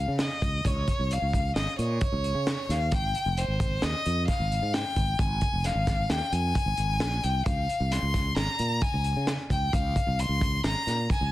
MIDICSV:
0, 0, Header, 1, 4, 480
1, 0, Start_track
1, 0, Tempo, 454545
1, 684, Time_signature, 5, 2, 24, 8
1, 11952, End_track
2, 0, Start_track
2, 0, Title_t, "Violin"
2, 0, Program_c, 0, 40
2, 0, Note_on_c, 0, 77, 78
2, 208, Note_off_c, 0, 77, 0
2, 220, Note_on_c, 0, 75, 74
2, 699, Note_on_c, 0, 73, 75
2, 715, Note_off_c, 0, 75, 0
2, 1187, Note_on_c, 0, 77, 76
2, 1203, Note_off_c, 0, 73, 0
2, 1643, Note_off_c, 0, 77, 0
2, 1649, Note_on_c, 0, 75, 79
2, 1871, Note_off_c, 0, 75, 0
2, 1890, Note_on_c, 0, 73, 82
2, 2859, Note_on_c, 0, 77, 78
2, 2875, Note_off_c, 0, 73, 0
2, 3100, Note_on_c, 0, 79, 88
2, 3116, Note_off_c, 0, 77, 0
2, 3572, Note_on_c, 0, 72, 78
2, 3588, Note_off_c, 0, 79, 0
2, 4053, Note_on_c, 0, 75, 86
2, 4069, Note_off_c, 0, 72, 0
2, 4511, Note_off_c, 0, 75, 0
2, 4517, Note_on_c, 0, 77, 80
2, 5000, Note_on_c, 0, 79, 86
2, 5015, Note_off_c, 0, 77, 0
2, 5486, Note_on_c, 0, 80, 85
2, 5502, Note_off_c, 0, 79, 0
2, 5975, Note_on_c, 0, 77, 82
2, 5990, Note_off_c, 0, 80, 0
2, 6446, Note_on_c, 0, 79, 88
2, 6461, Note_off_c, 0, 77, 0
2, 6682, Note_on_c, 0, 80, 92
2, 6697, Note_off_c, 0, 79, 0
2, 7643, Note_on_c, 0, 79, 82
2, 7659, Note_off_c, 0, 80, 0
2, 7875, Note_off_c, 0, 79, 0
2, 7881, Note_on_c, 0, 77, 87
2, 8363, Note_on_c, 0, 84, 87
2, 8379, Note_off_c, 0, 77, 0
2, 8838, Note_off_c, 0, 84, 0
2, 8844, Note_on_c, 0, 82, 90
2, 9315, Note_on_c, 0, 80, 82
2, 9331, Note_off_c, 0, 82, 0
2, 9798, Note_off_c, 0, 80, 0
2, 10042, Note_on_c, 0, 79, 83
2, 10272, Note_on_c, 0, 77, 81
2, 10288, Note_off_c, 0, 79, 0
2, 10768, Note_on_c, 0, 84, 91
2, 10783, Note_off_c, 0, 77, 0
2, 11245, Note_off_c, 0, 84, 0
2, 11257, Note_on_c, 0, 82, 89
2, 11697, Note_off_c, 0, 82, 0
2, 11743, Note_on_c, 0, 80, 74
2, 11952, Note_off_c, 0, 80, 0
2, 11952, End_track
3, 0, Start_track
3, 0, Title_t, "Fretless electric bass"
3, 0, Program_c, 1, 35
3, 85, Note_on_c, 1, 49, 81
3, 290, Note_off_c, 1, 49, 0
3, 442, Note_on_c, 1, 37, 73
3, 649, Note_off_c, 1, 37, 0
3, 686, Note_on_c, 1, 37, 82
3, 891, Note_off_c, 1, 37, 0
3, 1049, Note_on_c, 1, 36, 85
3, 1253, Note_off_c, 1, 36, 0
3, 1288, Note_on_c, 1, 37, 64
3, 1596, Note_off_c, 1, 37, 0
3, 1648, Note_on_c, 1, 32, 81
3, 1750, Note_off_c, 1, 32, 0
3, 1887, Note_on_c, 1, 46, 82
3, 2092, Note_off_c, 1, 46, 0
3, 2243, Note_on_c, 1, 37, 83
3, 2450, Note_off_c, 1, 37, 0
3, 2477, Note_on_c, 1, 49, 80
3, 2687, Note_off_c, 1, 49, 0
3, 2842, Note_on_c, 1, 39, 72
3, 3050, Note_off_c, 1, 39, 0
3, 3088, Note_on_c, 1, 32, 87
3, 3293, Note_off_c, 1, 32, 0
3, 3442, Note_on_c, 1, 29, 90
3, 3649, Note_off_c, 1, 29, 0
3, 3676, Note_on_c, 1, 32, 67
3, 3989, Note_off_c, 1, 32, 0
3, 4048, Note_on_c, 1, 39, 82
3, 4150, Note_off_c, 1, 39, 0
3, 4290, Note_on_c, 1, 41, 77
3, 4494, Note_off_c, 1, 41, 0
3, 4645, Note_on_c, 1, 32, 79
3, 4850, Note_off_c, 1, 32, 0
3, 4881, Note_on_c, 1, 44, 82
3, 5088, Note_off_c, 1, 44, 0
3, 5243, Note_on_c, 1, 32, 81
3, 5449, Note_off_c, 1, 32, 0
3, 5480, Note_on_c, 1, 32, 84
3, 5687, Note_off_c, 1, 32, 0
3, 5843, Note_on_c, 1, 29, 80
3, 6049, Note_off_c, 1, 29, 0
3, 6074, Note_on_c, 1, 32, 67
3, 6386, Note_off_c, 1, 32, 0
3, 6435, Note_on_c, 1, 39, 78
3, 6542, Note_off_c, 1, 39, 0
3, 6678, Note_on_c, 1, 41, 77
3, 6885, Note_off_c, 1, 41, 0
3, 7032, Note_on_c, 1, 32, 76
3, 7139, Note_off_c, 1, 32, 0
3, 7157, Note_on_c, 1, 32, 73
3, 7375, Note_off_c, 1, 32, 0
3, 7394, Note_on_c, 1, 34, 76
3, 7614, Note_off_c, 1, 34, 0
3, 7647, Note_on_c, 1, 36, 68
3, 7860, Note_off_c, 1, 36, 0
3, 7878, Note_on_c, 1, 37, 80
3, 8085, Note_off_c, 1, 37, 0
3, 8241, Note_on_c, 1, 36, 88
3, 8446, Note_off_c, 1, 36, 0
3, 8474, Note_on_c, 1, 37, 66
3, 8786, Note_off_c, 1, 37, 0
3, 8833, Note_on_c, 1, 32, 84
3, 8939, Note_off_c, 1, 32, 0
3, 9076, Note_on_c, 1, 46, 76
3, 9284, Note_off_c, 1, 46, 0
3, 9439, Note_on_c, 1, 37, 82
3, 9646, Note_off_c, 1, 37, 0
3, 9678, Note_on_c, 1, 49, 79
3, 9885, Note_off_c, 1, 49, 0
3, 10031, Note_on_c, 1, 37, 75
3, 10241, Note_off_c, 1, 37, 0
3, 10278, Note_on_c, 1, 37, 85
3, 10485, Note_off_c, 1, 37, 0
3, 10633, Note_on_c, 1, 36, 84
3, 10842, Note_off_c, 1, 36, 0
3, 10867, Note_on_c, 1, 37, 69
3, 11182, Note_off_c, 1, 37, 0
3, 11235, Note_on_c, 1, 32, 83
3, 11341, Note_off_c, 1, 32, 0
3, 11478, Note_on_c, 1, 46, 82
3, 11686, Note_off_c, 1, 46, 0
3, 11838, Note_on_c, 1, 37, 82
3, 11952, Note_off_c, 1, 37, 0
3, 11952, End_track
4, 0, Start_track
4, 0, Title_t, "Drums"
4, 199, Note_on_c, 9, 38, 94
4, 199, Note_on_c, 9, 42, 75
4, 304, Note_off_c, 9, 38, 0
4, 304, Note_off_c, 9, 42, 0
4, 443, Note_on_c, 9, 36, 68
4, 447, Note_on_c, 9, 42, 56
4, 549, Note_off_c, 9, 36, 0
4, 552, Note_off_c, 9, 42, 0
4, 685, Note_on_c, 9, 36, 97
4, 686, Note_on_c, 9, 42, 73
4, 790, Note_off_c, 9, 36, 0
4, 791, Note_off_c, 9, 42, 0
4, 925, Note_on_c, 9, 42, 55
4, 926, Note_on_c, 9, 36, 70
4, 1031, Note_off_c, 9, 36, 0
4, 1031, Note_off_c, 9, 42, 0
4, 1170, Note_on_c, 9, 42, 70
4, 1276, Note_off_c, 9, 42, 0
4, 1409, Note_on_c, 9, 36, 64
4, 1415, Note_on_c, 9, 42, 50
4, 1515, Note_off_c, 9, 36, 0
4, 1521, Note_off_c, 9, 42, 0
4, 1648, Note_on_c, 9, 38, 89
4, 1648, Note_on_c, 9, 42, 66
4, 1753, Note_off_c, 9, 38, 0
4, 1753, Note_off_c, 9, 42, 0
4, 1888, Note_on_c, 9, 42, 54
4, 1993, Note_off_c, 9, 42, 0
4, 2122, Note_on_c, 9, 42, 68
4, 2127, Note_on_c, 9, 36, 96
4, 2227, Note_off_c, 9, 42, 0
4, 2233, Note_off_c, 9, 36, 0
4, 2366, Note_on_c, 9, 42, 49
4, 2472, Note_off_c, 9, 42, 0
4, 2607, Note_on_c, 9, 38, 93
4, 2607, Note_on_c, 9, 42, 68
4, 2712, Note_off_c, 9, 38, 0
4, 2712, Note_off_c, 9, 42, 0
4, 2852, Note_on_c, 9, 38, 31
4, 2852, Note_on_c, 9, 42, 57
4, 2958, Note_off_c, 9, 38, 0
4, 2958, Note_off_c, 9, 42, 0
4, 3079, Note_on_c, 9, 42, 79
4, 3084, Note_on_c, 9, 36, 107
4, 3185, Note_off_c, 9, 42, 0
4, 3190, Note_off_c, 9, 36, 0
4, 3323, Note_on_c, 9, 42, 58
4, 3429, Note_off_c, 9, 42, 0
4, 3563, Note_on_c, 9, 42, 73
4, 3668, Note_off_c, 9, 42, 0
4, 3801, Note_on_c, 9, 36, 67
4, 3801, Note_on_c, 9, 42, 60
4, 3907, Note_off_c, 9, 36, 0
4, 3907, Note_off_c, 9, 42, 0
4, 4035, Note_on_c, 9, 38, 96
4, 4035, Note_on_c, 9, 42, 73
4, 4140, Note_off_c, 9, 38, 0
4, 4140, Note_off_c, 9, 42, 0
4, 4283, Note_on_c, 9, 42, 58
4, 4388, Note_off_c, 9, 42, 0
4, 4519, Note_on_c, 9, 38, 31
4, 4519, Note_on_c, 9, 42, 73
4, 4522, Note_on_c, 9, 36, 92
4, 4625, Note_off_c, 9, 38, 0
4, 4625, Note_off_c, 9, 42, 0
4, 4627, Note_off_c, 9, 36, 0
4, 4770, Note_on_c, 9, 42, 52
4, 4876, Note_off_c, 9, 42, 0
4, 5006, Note_on_c, 9, 38, 96
4, 5006, Note_on_c, 9, 42, 68
4, 5112, Note_off_c, 9, 38, 0
4, 5112, Note_off_c, 9, 42, 0
4, 5241, Note_on_c, 9, 42, 57
4, 5242, Note_on_c, 9, 36, 62
4, 5346, Note_off_c, 9, 42, 0
4, 5347, Note_off_c, 9, 36, 0
4, 5480, Note_on_c, 9, 42, 75
4, 5481, Note_on_c, 9, 36, 103
4, 5586, Note_off_c, 9, 42, 0
4, 5587, Note_off_c, 9, 36, 0
4, 5713, Note_on_c, 9, 42, 52
4, 5720, Note_on_c, 9, 36, 68
4, 5819, Note_off_c, 9, 42, 0
4, 5826, Note_off_c, 9, 36, 0
4, 5958, Note_on_c, 9, 38, 31
4, 5958, Note_on_c, 9, 42, 70
4, 6063, Note_off_c, 9, 38, 0
4, 6063, Note_off_c, 9, 42, 0
4, 6199, Note_on_c, 9, 38, 28
4, 6199, Note_on_c, 9, 42, 53
4, 6201, Note_on_c, 9, 36, 69
4, 6305, Note_off_c, 9, 38, 0
4, 6305, Note_off_c, 9, 42, 0
4, 6306, Note_off_c, 9, 36, 0
4, 6439, Note_on_c, 9, 38, 96
4, 6439, Note_on_c, 9, 42, 66
4, 6545, Note_off_c, 9, 38, 0
4, 6545, Note_off_c, 9, 42, 0
4, 6678, Note_on_c, 9, 42, 56
4, 6784, Note_off_c, 9, 42, 0
4, 6920, Note_on_c, 9, 36, 91
4, 6920, Note_on_c, 9, 42, 78
4, 7025, Note_off_c, 9, 36, 0
4, 7026, Note_off_c, 9, 42, 0
4, 7153, Note_on_c, 9, 42, 57
4, 7259, Note_off_c, 9, 42, 0
4, 7395, Note_on_c, 9, 38, 94
4, 7395, Note_on_c, 9, 42, 73
4, 7500, Note_off_c, 9, 38, 0
4, 7500, Note_off_c, 9, 42, 0
4, 7640, Note_on_c, 9, 42, 61
4, 7746, Note_off_c, 9, 42, 0
4, 7876, Note_on_c, 9, 42, 79
4, 7879, Note_on_c, 9, 36, 101
4, 7982, Note_off_c, 9, 42, 0
4, 7985, Note_off_c, 9, 36, 0
4, 8124, Note_on_c, 9, 42, 56
4, 8230, Note_off_c, 9, 42, 0
4, 8360, Note_on_c, 9, 38, 29
4, 8360, Note_on_c, 9, 42, 77
4, 8466, Note_off_c, 9, 38, 0
4, 8466, Note_off_c, 9, 42, 0
4, 8596, Note_on_c, 9, 36, 67
4, 8598, Note_on_c, 9, 38, 31
4, 8598, Note_on_c, 9, 42, 56
4, 8702, Note_off_c, 9, 36, 0
4, 8703, Note_off_c, 9, 38, 0
4, 8703, Note_off_c, 9, 42, 0
4, 8833, Note_on_c, 9, 38, 96
4, 8833, Note_on_c, 9, 42, 70
4, 8938, Note_off_c, 9, 38, 0
4, 8938, Note_off_c, 9, 42, 0
4, 9069, Note_on_c, 9, 42, 59
4, 9175, Note_off_c, 9, 42, 0
4, 9308, Note_on_c, 9, 42, 73
4, 9312, Note_on_c, 9, 36, 91
4, 9414, Note_off_c, 9, 42, 0
4, 9417, Note_off_c, 9, 36, 0
4, 9549, Note_on_c, 9, 42, 50
4, 9654, Note_off_c, 9, 42, 0
4, 9791, Note_on_c, 9, 38, 91
4, 9791, Note_on_c, 9, 42, 66
4, 9897, Note_off_c, 9, 38, 0
4, 9897, Note_off_c, 9, 42, 0
4, 10035, Note_on_c, 9, 36, 64
4, 10039, Note_on_c, 9, 42, 54
4, 10140, Note_off_c, 9, 36, 0
4, 10145, Note_off_c, 9, 42, 0
4, 10277, Note_on_c, 9, 36, 96
4, 10281, Note_on_c, 9, 42, 71
4, 10382, Note_off_c, 9, 36, 0
4, 10386, Note_off_c, 9, 42, 0
4, 10516, Note_on_c, 9, 36, 70
4, 10518, Note_on_c, 9, 42, 55
4, 10622, Note_off_c, 9, 36, 0
4, 10624, Note_off_c, 9, 42, 0
4, 10761, Note_on_c, 9, 42, 70
4, 10867, Note_off_c, 9, 42, 0
4, 10997, Note_on_c, 9, 36, 71
4, 11000, Note_on_c, 9, 42, 53
4, 11102, Note_off_c, 9, 36, 0
4, 11106, Note_off_c, 9, 42, 0
4, 11239, Note_on_c, 9, 38, 97
4, 11239, Note_on_c, 9, 42, 69
4, 11344, Note_off_c, 9, 38, 0
4, 11344, Note_off_c, 9, 42, 0
4, 11485, Note_on_c, 9, 38, 31
4, 11485, Note_on_c, 9, 42, 62
4, 11591, Note_off_c, 9, 38, 0
4, 11591, Note_off_c, 9, 42, 0
4, 11721, Note_on_c, 9, 36, 96
4, 11725, Note_on_c, 9, 42, 75
4, 11826, Note_off_c, 9, 36, 0
4, 11831, Note_off_c, 9, 42, 0
4, 11952, End_track
0, 0, End_of_file